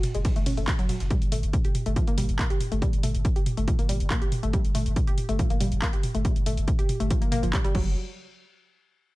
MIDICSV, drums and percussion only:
0, 0, Header, 1, 2, 480
1, 0, Start_track
1, 0, Tempo, 428571
1, 1238, Time_signature, 4, 2, 24, 8
1, 10248, End_track
2, 0, Start_track
2, 0, Title_t, "Drums"
2, 37, Note_on_c, 9, 45, 95
2, 37, Note_on_c, 9, 46, 97
2, 37, Note_on_c, 9, 51, 68
2, 149, Note_off_c, 9, 45, 0
2, 149, Note_off_c, 9, 46, 0
2, 149, Note_off_c, 9, 51, 0
2, 163, Note_on_c, 9, 42, 50
2, 275, Note_off_c, 9, 42, 0
2, 277, Note_on_c, 9, 42, 81
2, 277, Note_on_c, 9, 45, 68
2, 278, Note_on_c, 9, 36, 118
2, 278, Note_on_c, 9, 51, 93
2, 389, Note_off_c, 9, 42, 0
2, 389, Note_off_c, 9, 45, 0
2, 390, Note_off_c, 9, 36, 0
2, 390, Note_off_c, 9, 51, 0
2, 403, Note_on_c, 9, 42, 54
2, 515, Note_off_c, 9, 42, 0
2, 517, Note_on_c, 9, 45, 96
2, 517, Note_on_c, 9, 46, 82
2, 629, Note_off_c, 9, 45, 0
2, 629, Note_off_c, 9, 46, 0
2, 643, Note_on_c, 9, 42, 50
2, 755, Note_off_c, 9, 42, 0
2, 757, Note_on_c, 9, 38, 121
2, 757, Note_on_c, 9, 39, 111
2, 757, Note_on_c, 9, 42, 74
2, 757, Note_on_c, 9, 45, 91
2, 757, Note_on_c, 9, 51, 89
2, 758, Note_on_c, 9, 36, 124
2, 869, Note_off_c, 9, 38, 0
2, 869, Note_off_c, 9, 39, 0
2, 869, Note_off_c, 9, 42, 0
2, 869, Note_off_c, 9, 45, 0
2, 869, Note_off_c, 9, 51, 0
2, 870, Note_off_c, 9, 36, 0
2, 883, Note_on_c, 9, 38, 54
2, 883, Note_on_c, 9, 42, 53
2, 995, Note_off_c, 9, 38, 0
2, 995, Note_off_c, 9, 42, 0
2, 998, Note_on_c, 9, 45, 68
2, 998, Note_on_c, 9, 46, 93
2, 998, Note_on_c, 9, 51, 70
2, 1110, Note_off_c, 9, 45, 0
2, 1110, Note_off_c, 9, 46, 0
2, 1110, Note_off_c, 9, 51, 0
2, 1123, Note_on_c, 9, 38, 54
2, 1123, Note_on_c, 9, 42, 51
2, 1235, Note_off_c, 9, 38, 0
2, 1235, Note_off_c, 9, 42, 0
2, 1238, Note_on_c, 9, 36, 123
2, 1238, Note_on_c, 9, 42, 75
2, 1238, Note_on_c, 9, 45, 95
2, 1350, Note_off_c, 9, 36, 0
2, 1350, Note_off_c, 9, 42, 0
2, 1350, Note_off_c, 9, 45, 0
2, 1363, Note_on_c, 9, 42, 52
2, 1475, Note_off_c, 9, 42, 0
2, 1478, Note_on_c, 9, 45, 70
2, 1478, Note_on_c, 9, 46, 104
2, 1590, Note_off_c, 9, 45, 0
2, 1590, Note_off_c, 9, 46, 0
2, 1603, Note_on_c, 9, 42, 54
2, 1715, Note_off_c, 9, 42, 0
2, 1718, Note_on_c, 9, 36, 122
2, 1718, Note_on_c, 9, 42, 81
2, 1718, Note_on_c, 9, 45, 102
2, 1830, Note_off_c, 9, 36, 0
2, 1830, Note_off_c, 9, 42, 0
2, 1830, Note_off_c, 9, 45, 0
2, 1843, Note_on_c, 9, 42, 48
2, 1955, Note_off_c, 9, 42, 0
2, 1958, Note_on_c, 9, 45, 94
2, 1958, Note_on_c, 9, 46, 92
2, 2070, Note_off_c, 9, 45, 0
2, 2070, Note_off_c, 9, 46, 0
2, 2083, Note_on_c, 9, 42, 49
2, 2195, Note_off_c, 9, 42, 0
2, 2198, Note_on_c, 9, 36, 115
2, 2198, Note_on_c, 9, 42, 76
2, 2198, Note_on_c, 9, 45, 73
2, 2310, Note_off_c, 9, 36, 0
2, 2310, Note_off_c, 9, 42, 0
2, 2310, Note_off_c, 9, 45, 0
2, 2323, Note_on_c, 9, 42, 53
2, 2435, Note_off_c, 9, 42, 0
2, 2438, Note_on_c, 9, 45, 98
2, 2438, Note_on_c, 9, 46, 104
2, 2550, Note_off_c, 9, 45, 0
2, 2550, Note_off_c, 9, 46, 0
2, 2563, Note_on_c, 9, 42, 46
2, 2675, Note_off_c, 9, 42, 0
2, 2677, Note_on_c, 9, 36, 113
2, 2678, Note_on_c, 9, 39, 111
2, 2678, Note_on_c, 9, 42, 72
2, 2678, Note_on_c, 9, 45, 94
2, 2789, Note_off_c, 9, 36, 0
2, 2790, Note_off_c, 9, 39, 0
2, 2790, Note_off_c, 9, 42, 0
2, 2790, Note_off_c, 9, 45, 0
2, 2803, Note_on_c, 9, 42, 53
2, 2915, Note_off_c, 9, 42, 0
2, 2917, Note_on_c, 9, 45, 69
2, 2917, Note_on_c, 9, 46, 88
2, 3029, Note_off_c, 9, 45, 0
2, 3029, Note_off_c, 9, 46, 0
2, 3043, Note_on_c, 9, 42, 49
2, 3155, Note_off_c, 9, 42, 0
2, 3158, Note_on_c, 9, 36, 114
2, 3158, Note_on_c, 9, 42, 74
2, 3158, Note_on_c, 9, 45, 95
2, 3270, Note_off_c, 9, 36, 0
2, 3270, Note_off_c, 9, 42, 0
2, 3270, Note_off_c, 9, 45, 0
2, 3283, Note_on_c, 9, 42, 52
2, 3395, Note_off_c, 9, 42, 0
2, 3398, Note_on_c, 9, 45, 100
2, 3398, Note_on_c, 9, 46, 101
2, 3510, Note_off_c, 9, 45, 0
2, 3510, Note_off_c, 9, 46, 0
2, 3523, Note_on_c, 9, 42, 52
2, 3635, Note_off_c, 9, 42, 0
2, 3638, Note_on_c, 9, 36, 124
2, 3638, Note_on_c, 9, 42, 77
2, 3638, Note_on_c, 9, 45, 71
2, 3750, Note_off_c, 9, 36, 0
2, 3750, Note_off_c, 9, 42, 0
2, 3750, Note_off_c, 9, 45, 0
2, 3763, Note_on_c, 9, 42, 49
2, 3875, Note_off_c, 9, 42, 0
2, 3877, Note_on_c, 9, 45, 97
2, 3877, Note_on_c, 9, 46, 88
2, 3989, Note_off_c, 9, 45, 0
2, 3989, Note_off_c, 9, 46, 0
2, 4003, Note_on_c, 9, 42, 50
2, 4115, Note_off_c, 9, 42, 0
2, 4117, Note_on_c, 9, 42, 78
2, 4117, Note_on_c, 9, 45, 98
2, 4118, Note_on_c, 9, 36, 111
2, 4229, Note_off_c, 9, 42, 0
2, 4229, Note_off_c, 9, 45, 0
2, 4230, Note_off_c, 9, 36, 0
2, 4243, Note_on_c, 9, 42, 52
2, 4355, Note_off_c, 9, 42, 0
2, 4358, Note_on_c, 9, 45, 69
2, 4358, Note_on_c, 9, 46, 100
2, 4470, Note_off_c, 9, 45, 0
2, 4470, Note_off_c, 9, 46, 0
2, 4483, Note_on_c, 9, 42, 49
2, 4595, Note_off_c, 9, 42, 0
2, 4598, Note_on_c, 9, 36, 113
2, 4598, Note_on_c, 9, 39, 108
2, 4598, Note_on_c, 9, 42, 73
2, 4598, Note_on_c, 9, 45, 97
2, 4710, Note_off_c, 9, 36, 0
2, 4710, Note_off_c, 9, 39, 0
2, 4710, Note_off_c, 9, 42, 0
2, 4710, Note_off_c, 9, 45, 0
2, 4723, Note_on_c, 9, 42, 53
2, 4835, Note_off_c, 9, 42, 0
2, 4838, Note_on_c, 9, 45, 96
2, 4838, Note_on_c, 9, 46, 89
2, 4950, Note_off_c, 9, 45, 0
2, 4950, Note_off_c, 9, 46, 0
2, 4963, Note_on_c, 9, 42, 51
2, 5075, Note_off_c, 9, 42, 0
2, 5078, Note_on_c, 9, 36, 117
2, 5078, Note_on_c, 9, 42, 76
2, 5078, Note_on_c, 9, 45, 67
2, 5190, Note_off_c, 9, 36, 0
2, 5190, Note_off_c, 9, 42, 0
2, 5190, Note_off_c, 9, 45, 0
2, 5203, Note_on_c, 9, 42, 53
2, 5315, Note_off_c, 9, 42, 0
2, 5318, Note_on_c, 9, 45, 92
2, 5318, Note_on_c, 9, 46, 98
2, 5430, Note_off_c, 9, 45, 0
2, 5430, Note_off_c, 9, 46, 0
2, 5443, Note_on_c, 9, 42, 56
2, 5555, Note_off_c, 9, 42, 0
2, 5557, Note_on_c, 9, 42, 81
2, 5557, Note_on_c, 9, 45, 98
2, 5558, Note_on_c, 9, 36, 119
2, 5669, Note_off_c, 9, 42, 0
2, 5669, Note_off_c, 9, 45, 0
2, 5670, Note_off_c, 9, 36, 0
2, 5683, Note_on_c, 9, 42, 51
2, 5795, Note_off_c, 9, 42, 0
2, 5797, Note_on_c, 9, 45, 67
2, 5797, Note_on_c, 9, 46, 83
2, 5909, Note_off_c, 9, 45, 0
2, 5909, Note_off_c, 9, 46, 0
2, 5923, Note_on_c, 9, 42, 49
2, 6035, Note_off_c, 9, 42, 0
2, 6037, Note_on_c, 9, 42, 78
2, 6037, Note_on_c, 9, 45, 99
2, 6038, Note_on_c, 9, 36, 111
2, 6149, Note_off_c, 9, 42, 0
2, 6149, Note_off_c, 9, 45, 0
2, 6150, Note_off_c, 9, 36, 0
2, 6163, Note_on_c, 9, 42, 53
2, 6275, Note_off_c, 9, 42, 0
2, 6277, Note_on_c, 9, 45, 97
2, 6277, Note_on_c, 9, 46, 101
2, 6389, Note_off_c, 9, 45, 0
2, 6389, Note_off_c, 9, 46, 0
2, 6403, Note_on_c, 9, 42, 50
2, 6515, Note_off_c, 9, 42, 0
2, 6518, Note_on_c, 9, 36, 112
2, 6518, Note_on_c, 9, 39, 120
2, 6518, Note_on_c, 9, 42, 71
2, 6518, Note_on_c, 9, 45, 63
2, 6630, Note_off_c, 9, 36, 0
2, 6630, Note_off_c, 9, 39, 0
2, 6630, Note_off_c, 9, 42, 0
2, 6630, Note_off_c, 9, 45, 0
2, 6643, Note_on_c, 9, 42, 54
2, 6755, Note_off_c, 9, 42, 0
2, 6758, Note_on_c, 9, 45, 91
2, 6758, Note_on_c, 9, 46, 89
2, 6870, Note_off_c, 9, 45, 0
2, 6870, Note_off_c, 9, 46, 0
2, 6883, Note_on_c, 9, 42, 52
2, 6995, Note_off_c, 9, 42, 0
2, 6998, Note_on_c, 9, 36, 120
2, 6998, Note_on_c, 9, 42, 81
2, 6998, Note_on_c, 9, 45, 89
2, 7110, Note_off_c, 9, 36, 0
2, 7110, Note_off_c, 9, 42, 0
2, 7110, Note_off_c, 9, 45, 0
2, 7123, Note_on_c, 9, 42, 55
2, 7235, Note_off_c, 9, 42, 0
2, 7238, Note_on_c, 9, 45, 65
2, 7238, Note_on_c, 9, 46, 100
2, 7350, Note_off_c, 9, 45, 0
2, 7350, Note_off_c, 9, 46, 0
2, 7363, Note_on_c, 9, 42, 57
2, 7475, Note_off_c, 9, 42, 0
2, 7478, Note_on_c, 9, 36, 121
2, 7478, Note_on_c, 9, 42, 80
2, 7478, Note_on_c, 9, 45, 94
2, 7590, Note_off_c, 9, 36, 0
2, 7590, Note_off_c, 9, 42, 0
2, 7590, Note_off_c, 9, 45, 0
2, 7603, Note_on_c, 9, 42, 54
2, 7715, Note_off_c, 9, 42, 0
2, 7717, Note_on_c, 9, 45, 86
2, 7717, Note_on_c, 9, 46, 91
2, 7829, Note_off_c, 9, 45, 0
2, 7829, Note_off_c, 9, 46, 0
2, 7843, Note_on_c, 9, 42, 54
2, 7955, Note_off_c, 9, 42, 0
2, 7957, Note_on_c, 9, 36, 113
2, 7957, Note_on_c, 9, 42, 85
2, 7957, Note_on_c, 9, 45, 65
2, 8069, Note_off_c, 9, 36, 0
2, 8069, Note_off_c, 9, 42, 0
2, 8069, Note_off_c, 9, 45, 0
2, 8082, Note_on_c, 9, 42, 55
2, 8194, Note_off_c, 9, 42, 0
2, 8197, Note_on_c, 9, 45, 91
2, 8197, Note_on_c, 9, 46, 98
2, 8309, Note_off_c, 9, 45, 0
2, 8309, Note_off_c, 9, 46, 0
2, 8323, Note_on_c, 9, 42, 53
2, 8435, Note_off_c, 9, 42, 0
2, 8437, Note_on_c, 9, 36, 113
2, 8437, Note_on_c, 9, 39, 118
2, 8437, Note_on_c, 9, 42, 77
2, 8437, Note_on_c, 9, 45, 87
2, 8549, Note_off_c, 9, 36, 0
2, 8549, Note_off_c, 9, 39, 0
2, 8549, Note_off_c, 9, 42, 0
2, 8549, Note_off_c, 9, 45, 0
2, 8563, Note_on_c, 9, 42, 54
2, 8675, Note_off_c, 9, 42, 0
2, 8677, Note_on_c, 9, 36, 115
2, 8677, Note_on_c, 9, 49, 88
2, 8789, Note_off_c, 9, 36, 0
2, 8789, Note_off_c, 9, 49, 0
2, 10248, End_track
0, 0, End_of_file